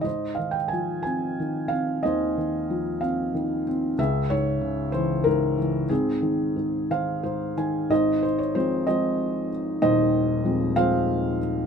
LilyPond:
<<
  \new Staff \with { instrumentName = "Felt piano" } { \time 6/8 \key aes \major \tempo 4. = 62 << { ees''8 f''16 g''16 aes''8 aes''4 f''8 | ees''4. f''4 r8 | fes''8 des''4 c''8 bes'4 | aes'4. f''4. |
ees''8 c''16 des''16 c''8 ees''4. | ees''4. f''4. | } \\ { c''4. r4. | c''4. r4. | aes'4. r4. | c'4. c''4. |
c''4. c''4. | c''4. c''4. | } >> }
  \new Staff \with { instrumentName = "Felt piano" } { \clef bass \time 6/8 \key aes \major aes,8 ees8 f8 c'8 ees8 c'8 | ees,8 ees8 f8 c'8 ees8 c'8 | des,8 aes,8 des8 fes8 aes,8 fes8 | aes,8 ees8 aes,8 ees8 <aes, c''>8 <ees aes''>8 |
<aes,, aes,>4 <f aes c'>8 <f aes c'>4 r8 | <ees,, ees,>4 <f aes c'>8 <f aes c'>4 r8 | }
>>